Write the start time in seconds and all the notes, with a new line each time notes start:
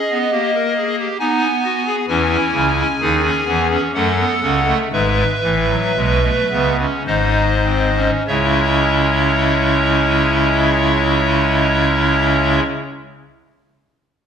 Already playing: G#4 D#5
0.11 B3
0.32 A#3 G4
0.55 A#4
0.77 G#4
0.99 G4
1.20 B3 D#4 G#5
1.64 F#4
1.86 G#4
2.08 E2 E3 C#4 E4 G#5
2.53 C#2 C#3
3.01 D#2 D#3 D#4 G#4
3.24 C#4
3.47 E2 E3 B3
3.70 C#4
3.94 F#2 F#3 A3 A4 F#5
4.19 B3
4.42 C#2 C#3 C#4
4.67 A3
4.92 G#1 G#2 G#3 B4 E5
5.43 A1 A2 E3
5.69 F#3
5.96 B1 B2 G#3
6.23 A3
6.51 C#2 C#3 B3
6.79 C#4
7.07 G#1 G#2 D#4 C5 D#5
7.65 C4
7.96 C#4
8.27 C#2 C#3 G#3 C#4 E4 C#5 E5